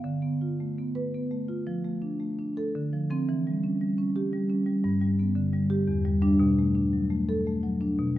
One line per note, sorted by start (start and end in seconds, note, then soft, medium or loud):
0.04 1.63 D3 medium
0.22 0.52 B3 medium
0.41 0.70 F4 medium
0.60 0.89 A3 medium
0.78 1.07 B3 medium
0.95 1.24 B4 medium
1.14 1.42 B3 medium
1.31 1.59 A3 medium
1.48 1.66 F4 medium
1.67 2.72 F3 medium
1.84 2.13 A3 medium
2.02 2.31 D4 medium
2.20 2.50 A3 medium
2.39 2.68 D4 medium
2.57 2.75 A4 medium
2.75 3.27 D3 medium
2.93 3.09 F3 medium
3.10 3.26 F3 medium
3.10 3.27 C4 loud
3.29 4.81 E3 medium
3.47 3.74 G3 medium
3.64 3.91 C#4 medium
3.81 4.09 G3 medium
3.98 4.26 C#4 medium
4.16 4.43 G4 medium
4.33 4.61 G3 medium
4.50 4.78 C#4 medium
4.66 4.84 G3 medium
4.84 5.85 G2 loud
5.01 5.30 G3 medium
5.19 5.47 B3 medium
5.36 5.64 D3 medium
5.53 5.81 G3 medium
5.70 5.88 G4 loud
5.87 6.38 E2 loud
6.05 6.21 G3 medium
6.22 6.38 G3 medium
6.22 6.38 D4 loud
6.40 7.94 B2 loud
6.59 6.87 A3 medium
6.75 7.04 D4 medium
6.93 7.21 F#3 medium
7.10 7.39 A3 medium
7.29 7.57 A4 loud
7.47 7.74 A3 medium
7.64 7.91 F#3 medium
7.81 7.98 D4 medium
7.98 8.19 B2 loud